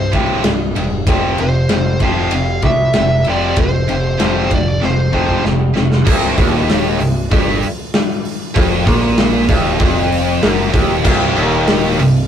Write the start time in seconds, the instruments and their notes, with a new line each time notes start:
Already playing: picked electric bass C1, distorted electric guitar C2 G2, lead electric guitar C5
0.13 distorted electric guitar C2 G2 C3, kick, ride
0.44 picked electric bass C1, distorted electric guitar C2 G2, snare, ride
0.76 picked electric bass E1, distorted electric guitar C2 G2, ride
1.07 picked electric bass F1, distorted electric guitar F2 C3 F3, kick, ride
1.38 picked electric bass F1, distorted electric guitar F2 C3, lead electric guitar C5, ride
1.69 picked electric bass F1, distorted electric guitar F2 C3, snare, ride
2.00 picked electric bass F1, distorted electric guitar F2 C3 F3, lead electric guitar F5, kick, ride
2.31 picked electric bass F1, distorted electric guitar F2 C3, ride
2.62 picked electric bass C2, distorted electric guitar F2 C3, lead electric guitar E5, kick, ride
2.93 picked electric bass F1, distorted electric guitar F2 C3, snare, ride
3.25 picked electric bass F1, distorted electric guitar F2 C3 F3, ride
3.30 lead electric guitar D5
3.56 picked electric bass F1, distorted electric guitar F2 C3, kick, ride
3.61 lead electric guitar C5
3.89 picked electric bass F1, distorted electric guitar F2 C3, ride
4.19 picked electric bass F1, distorted electric guitar F2 C3 F3, snare, ride
4.50 picked electric bass F1, distorted electric guitar F2 C3, lead electric guitar D5, kick, ride
4.81 picked electric bass F1, distorted electric guitar F2 C3, lead electric guitar C5, snare
5.12 distorted electric guitar F2 C3 F3, kick
5.29 kick
5.43 picked electric bass F1, distorted electric guitar F2 C3, snare
5.76 picked electric bass F1, distorted electric guitar F2 C3, snare
5.92 snare
6.06 picked electric bass C1, distorted electric guitar C2, kick, crash
6.37 picked electric bass D#1, distorted electric guitar D#2, kick, open hi-hat
6.69 snare, open hi-hat
6.99 picked electric bass C1, distorted electric guitar C2, open hi-hat
7.31 picked electric bass G1, distorted electric guitar G2, kick, open hi-hat
7.62 open hi-hat
7.94 snare, open hi-hat
8.25 open hi-hat
8.55 picked electric bass F1, distorted electric guitar F2, kick, open hi-hat
8.86 picked electric bass A#1, distorted electric guitar A#2, kick, open hi-hat
9.18 snare, open hi-hat
9.49 picked electric bass D#1, distorted electric guitar D#2, kick, open hi-hat
9.80 picked electric bass F1, distorted electric guitar F2, kick, open hi-hat
10.12 open hi-hat
10.42 picked electric bass F#1, distorted electric guitar F#2, snare, open hi-hat
10.73 picked electric bass D#1, distorted electric guitar D#2, kick, open hi-hat
11.04 picked electric bass C1, distorted electric guitar C2, kick, crash
11.35 picked electric bass D#1, distorted electric guitar D#2, open hi-hat
11.67 snare, open hi-hat
11.99 picked electric bass C1, distorted electric guitar C2, open hi-hat